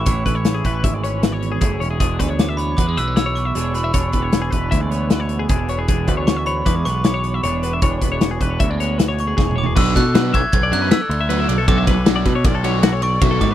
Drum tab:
CC |------------------------------|------------------------------|------------------------------|------------------------------|
RD |------------------------------|------------------------------|------------------------------|------------------------------|
HH |x--x--x--x--x--x--x--x--x--x--|x--x--x--x--x--x--x--x--x--x--|x--x--x--x--x--x--x--x--x--x--|x--x--x--x--x--x--x--x--x--x--|
SD |------o-----------o-----------|------o-----------o-----------|------o-----o-----o-----------|------o-----o-----o-----------|
T2 |------------------------------|------------------------------|------------------------------|------------------------------|
FT |------------------------------|------------------------------|------------------------------|------------------------------|
BD |o--o-----o--o-----------o-----|o--o--------o-----------------|o--o-----o--o-----------o-----|o--o--------o-----------------|

CC |------------------------------|x-----------------------------|------------------------------|
RD |------------------------------|---x--x--x--x--x--x--x--x--x--|x--x--x--x--x--x--x--x--x--x--|
HH |x--x--x--x--x--x--x--x--------|------------------------------|------------------------------|
SD |------o-----------o-----o-----|---o--o--o--------o-----------|---o--o--o--o--o--o--o--o-----|
T2 |--------------------------o---|------------------------------|------------------------------|
FT |----------------------------o-|------------------------------|------------------------------|
BD |o--o-----o--o-----------o-----|o--o-----o--o-----------------|o--o-----o--o-----------o--o--|